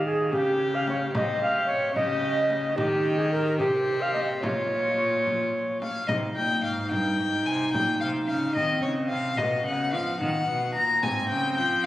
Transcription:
0.00 0.33 D#3 medium
0.06 0.32 G#4 medium
0.32 1.14 C#3 medium
0.32 1.13 G4 medium
0.32 0.76 G4 loud
0.32 frame drum medium
0.75 0.87 F5 medium
0.87 0.95 C#5 medium
0.87 frame drum medium
1.14 1.95 C3 medium
1.14 1.94 G4 medium
1.14 1.42 D#5 medium
1.14 frame drum medium
1.42 1.66 F5 medium
1.67 1.94 C#5 medium
1.95 2.76 C#3 medium
1.95 2.76 G4 medium
1.95 2.78 D#5 loud
1.95 frame drum medium
2.50 frame drum medium
2.76 3.61 D#3 medium
2.76 3.19 G4 loud
2.76 3.58 G4 medium
2.76 frame drum medium
3.17 3.31 G#4 loud
3.31 3.59 A#4 loud
3.59 4.44 C3 medium
3.59 4.03 G4 loud
3.59 4.44 G4 medium
3.59 frame drum medium
4.01 4.13 F5 medium
4.14 4.20 D#5 medium
4.14 frame drum soft
4.41 5.89 A#2 medium
4.41 5.81 F4 medium
4.41 5.78 C#5 medium
4.41 frame drum medium
5.27 frame drum soft
5.82 6.07 F5 medium
5.82 frame drum soft
6.08 6.35 C3 medium
6.08 8.59 D#4 medium
6.08 6.16 D#5 medium
6.08 frame drum medium
6.36 6.63 A#2 soft
6.36 6.64 G5 medium
6.64 6.92 G#2 medium
6.64 6.91 F5 medium
6.91 7.20 G2 medium
6.91 7.48 G5 medium
6.91 frame drum soft
7.19 7.46 G#2 medium
7.46 7.74 C3 medium
7.46 7.73 G#5 medium
7.73 8.01 A#2 medium
7.73 8.00 G5 medium
7.73 frame drum medium
8.01 8.28 C3 soft
8.01 8.09 F5 medium
8.27 8.56 C#3 medium
8.27 8.55 F5 medium
8.55 8.83 D#3 medium
8.55 9.39 C4 medium
8.55 8.82 D#5 medium
8.55 frame drum soft
8.82 9.13 C#3 medium
8.82 8.90 C#5 medium
9.09 9.38 C3 medium
9.09 9.39 F5 medium
9.38 9.65 B2 medium
9.38 10.20 B3 medium
9.38 9.65 D#5 medium
9.38 frame drum medium
9.66 9.96 C#3 medium
9.66 9.93 F#5 medium
9.93 10.20 F3 medium
9.93 10.20 F5 medium
10.20 10.47 D#3 medium
10.20 11.04 B3 medium
10.20 10.74 F#5 medium
10.20 frame drum soft
10.49 10.77 B2 medium
10.74 11.06 A#2 medium
10.74 11.04 A#5 medium
11.02 11.33 G#2 medium
11.02 11.86 C4 medium
11.02 11.28 G#5 medium
11.02 frame drum medium
11.29 11.60 C#3 medium
11.29 11.56 G5 medium
11.57 11.86 F3 medium
11.57 11.85 G5 medium

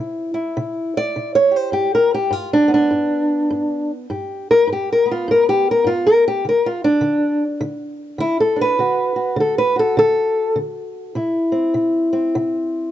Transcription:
0.00 0.52 C3 medium
0.00 0.33 E4 soft
0.34 1.71 E4 medium
0.57 1.11 C3 medium
0.97 1.35 D5 loud
1.16 1.70 C3 medium
1.35 1.56 C#5 medium
1.51 1.73 G4 soft
1.56 1.73 C5 medium
1.72 2.27 G2 medium
1.72 1.93 G4 loud
1.95 2.14 A#4 loud
2.14 2.34 G4 medium
2.31 2.86 G2 medium
2.31 2.52 F4 medium
2.53 2.73 D4 loud
2.68 4.06 B3 medium
2.74 3.91 D4 loud
2.91 3.46 G2 medium
3.50 4.05 G2 medium
4.10 4.64 G2 medium
4.10 4.49 G4 soft
4.51 4.69 A#4 loud
4.67 5.22 G2 medium
4.72 4.90 G4 medium
4.92 5.10 A#4 medium
5.06 6.42 B3 medium
5.11 5.29 F4 medium
5.28 5.82 G2 medium
5.28 5.49 A#4 loud
5.49 5.67 G4 loud
5.71 5.88 A#4 medium
5.84 6.40 G2 medium
5.84 6.06 F4 medium
6.07 6.26 A#4 medium
6.28 6.46 G4 loud
6.45 6.99 D3 medium
6.49 6.66 A#4 medium
6.66 6.84 F4 medium
6.84 7.43 D4 loud
7.01 7.57 D3 medium
7.61 8.16 D3 medium
8.18 8.74 D3 medium
8.18 8.40 E4 loud
8.40 8.60 A4 medium
8.56 8.76 D4 medium
8.61 9.39 B4 loud
8.79 9.34 D3 medium
8.79 9.15 F#4 soft
9.16 9.75 F#4 soft
9.36 9.92 D3 medium
9.40 9.58 A4 medium
9.58 9.78 B4 loud
9.76 11.13 F#4 medium
9.76 9.97 A4 medium
9.97 10.52 D3 medium
9.97 10.57 A4 loud
10.56 11.11 D3 medium
11.15 11.70 C3 medium
11.15 12.91 E4 soft
11.52 12.11 C4 soft
11.74 12.29 C3 medium
12.13 12.91 C4 medium
12.35 12.89 C3 medium

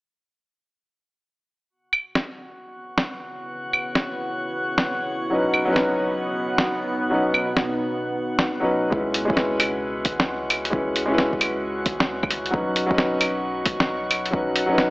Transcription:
1.70 5.28 C#3 medium
1.70 5.28 B3 medium
1.70 5.28 E4 medium
1.70 8.92 F#4 medium
1.70 8.88 C#5 medium
1.70 8.92 F#5 medium
1.93 claves medium
2.15 snare medium
2.98 snare medium
3.73 claves medium
3.95 snare loud
4.78 snare loud
5.30 8.89 B2 medium
5.30 5.63 F#3 medium
5.30 8.89 B3 medium
5.30 5.65 C#4 medium
5.30 8.89 D#4 medium
5.30 5.66 D#4 medium
5.30 5.66 B4 medium
5.54 claves medium
5.65 7.08 F#3 medium
5.65 7.09 C#4 medium
5.70 7.11 D#4 medium
5.70 7.12 B4 medium
5.76 snare loud
6.58 snare loud
7.10 7.45 F#3 medium
7.10 7.45 C#4 medium
7.10 7.46 D#4 medium
7.10 7.47 B4 medium
7.34 claves medium
7.57 snare loud
8.39 snare loud
8.60 8.89 F#3 medium
8.60 8.90 C#4 medium
8.60 8.91 D#4 medium
8.64 8.91 B4 medium
8.90 12.52 C#2 medium
8.90 9.24 G#3 medium
8.90 9.25 C#4 medium
8.90 9.26 E4 medium
8.90 14.90 F#4 medium
8.90 9.27 B4 medium
8.90 14.90 F#5 medium
8.90 kick loud
9.14 closed hi-hat medium
9.25 10.69 G#3 medium
9.25 10.70 C#4 medium
9.30 10.71 E4 medium
9.30 10.72 B4 medium
9.30 kick loud
9.37 snare loud
9.60 closed hi-hat medium
9.60 claves medium
10.05 kick loud
10.05 closed hi-hat medium
10.20 snare loud
10.50 closed hi-hat medium
10.50 claves medium
10.65 closed hi-hat soft
10.70 11.04 G#3 medium
10.70 11.06 C#4 medium
10.70 11.07 E4 medium
10.70 11.07 B4 medium
10.70 kick loud
10.96 closed hi-hat medium
11.06 12.49 G#3 medium
11.06 12.50 C#4 medium
11.11 12.52 E4 medium
11.11 12.53 B4 medium
11.18 snare loud
11.33 kick medium
11.41 closed hi-hat medium
11.41 claves medium
11.86 kick loud
11.86 closed hi-hat medium
12.00 snare loud
12.23 kick loud
12.23 claves soft
12.31 closed hi-hat medium
12.46 closed hi-hat soft
12.50 14.90 B1 medium
12.50 12.85 F#3 medium
12.50 12.86 C#4 medium
12.50 12.87 D#4 medium
12.50 kick loud
12.55 12.88 B4 medium
12.76 closed hi-hat medium
12.86 14.29 F#3 medium
12.86 14.30 C#4 medium
12.91 14.32 D#4 medium
12.91 14.33 B4 medium
12.91 kick loud
12.98 snare loud
13.21 closed hi-hat medium
13.21 claves medium
13.66 kick loud
13.66 closed hi-hat medium
13.80 snare loud
14.11 closed hi-hat medium
14.11 claves medium
14.26 closed hi-hat soft
14.31 14.65 F#3 medium
14.31 14.67 C#4 medium
14.31 14.67 D#4 medium
14.31 14.68 B4 medium
14.31 kick loud
14.56 closed hi-hat medium
14.66 14.90 F#3 medium
14.66 14.90 C#4 medium
14.71 14.90 D#4 medium
14.71 14.90 B4 medium
14.78 snare loud

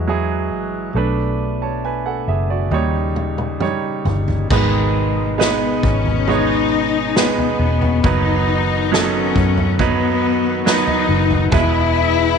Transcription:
0.00 0.51 E2 medium
0.00 0.91 E3 medium
0.00 0.08 F#3 medium
0.00 0.91 G#3 soft
0.00 0.09 E4 medium
0.00 0.92 F#4 medium
0.00 0.09 G#4 medium
0.08 0.91 F#3 medium
0.08 0.92 E4 medium
0.08 0.92 G#4 medium
0.51 0.92 A1 medium
0.93 2.23 B1 medium
0.93 2.69 B2 medium
0.93 2.69 A3 medium
0.93 1.79 A3 medium
0.93 2.69 D4 medium
0.93 1.80 D4 medium
0.97 1.41 B4 medium
1.62 1.83 C#5 soft
1.62 1.83 A5 medium
1.85 2.05 B4 soft
1.85 2.05 G#5 medium
2.06 2.27 A4 soft
2.06 2.27 F#5 medium
2.28 2.69 F#1 medium
2.28 2.49 G#4 soft
2.28 2.49 E5 medium
2.50 2.92 F#4 soft
2.50 2.92 D5 medium
2.71 3.56 D#2 medium
2.71 4.02 A#2 medium
2.71 4.48 C#3 medium
2.71 4.48 G3 soft
2.71 3.56 G3 medium
2.71 4.48 D#4 medium
2.71 3.57 D#4 medium
2.71 3.57 C#5 medium
2.71 high tom soft
3.16 mid tom medium
3.38 mid tom soft
3.60 4.46 G3 medium
3.60 4.46 D#4 medium
3.60 4.47 C#5 medium
3.60 mid tom medium
4.05 4.47 G1 medium
4.05 floor tom medium
4.28 floor tom medium
4.50 5.79 G#1 loud
4.50 5.80 G#2 medium
4.50 8.00 B2 medium
4.50 5.80 D#3 medium
4.50 5.35 G#3 medium
4.50 8.01 G#3 medium
4.50 5.35 G#3 medium
4.50 5.35 B3 medium
4.50 6.26 D#4 medium
4.50 5.36 D#4 medium
4.50 5.36 B4 medium
4.50 kick loud
4.50 floor tom loud
4.50 crash medium
5.38 6.23 G#3 medium
5.38 5.83 B3 medium
5.38 6.23 B3 medium
5.38 6.23 D#4 medium
5.38 6.23 B4 medium
5.38 snare loud
5.83 7.56 G#1 medium
5.83 6.27 C#4 medium
5.83 kick medium
5.83 floor tom medium
6.05 floor tom medium
6.27 7.11 G#3 medium
6.27 7.11 B3 medium
6.27 8.02 C#4 medium
6.27 7.16 D#4 loud
6.27 7.12 D#4 medium
6.27 7.12 C#5 medium
6.27 floor tom medium
7.16 8.00 G#3 medium
7.16 8.04 B3 medium
7.16 8.00 B3 medium
7.16 8.01 D#4 medium
7.16 8.01 B4 medium
7.16 snare loud
7.38 floor tom medium
7.59 8.01 E1 medium
7.82 floor tom medium
8.03 9.32 F#1 loud
8.03 11.49 D#3 medium
8.03 8.88 F#3 medium
8.03 12.38 B3 medium
8.03 8.88 B3 medium
8.03 8.93 D#4 medium
8.03 8.88 D#4 medium
8.03 11.49 F#4 medium
8.03 8.89 B4 medium
8.03 kick loud
8.03 floor tom loud
8.92 9.75 F#3 medium
8.92 9.75 B3 medium
8.92 9.80 C#4 loud
8.92 9.76 D#4 medium
8.92 9.76 A4 medium
8.92 snare loud
9.36 11.05 F#2 medium
9.36 kick medium
9.36 floor tom medium
9.57 floor tom medium
9.79 10.62 F#3 medium
9.79 10.62 B3 loud
9.79 10.62 B3 medium
9.79 10.62 D#4 medium
9.79 10.63 B4 loud
9.79 kick loud
9.79 floor tom medium
10.66 11.48 F#3 medium
10.66 11.49 B3 medium
10.66 11.49 D#4 medium
10.66 11.49 B4 medium
10.66 snare loud
10.87 floor tom medium
11.09 11.49 F#1 loud
11.30 floor tom medium
11.52 12.38 E1 loud
11.52 12.38 B2 medium
11.52 12.38 E3 medium
11.52 12.34 G#3 medium
11.52 12.35 B3 medium
11.52 12.38 E4 loud
11.52 12.35 E4 medium
11.52 12.38 G#4 medium
11.52 12.35 B4 medium
11.52 kick loud
11.52 floor tom loud

